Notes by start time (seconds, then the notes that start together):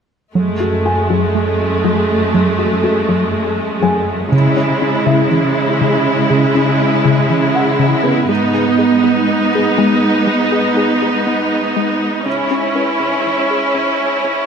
0.35 F#2 F#3 G#3 A3
0.60 F#4
0.85 F#4 G#5
1.10 F#3
1.35 A3
1.84 F#3
2.34 F#3
2.59 F#4
2.84 F#4 A4
3.09 F#3
3.34 A3
3.82 F#3 G#4 G#5
4.32 C#3 G#3 E4
4.57 C#4
4.82 C#4
5.06 C#3 E4 E5
5.31 E3
5.81 C#3
6.30 C#3
6.55 C#4
6.80 C#4
7.05 C#3
7.30 E3
7.55 F#5
7.79 C#3
8.03 B3 B4
8.29 G#2 G#3 B3 D#4
8.54 G#4
8.79 G#4
9.04 G#3
9.28 B3
9.54 G#3 G#4
9.78 G#3
10.27 G#3
10.52 G#4
10.77 G#4
11.02 G#3
11.27 B3
11.76 G#3
12.25 G#2 C#3 C#4 E4
12.51 C#4
12.75 C#4 B4
13.00 C#3
13.25 E3
13.50 G#4
13.74 C#3
14.24 C#3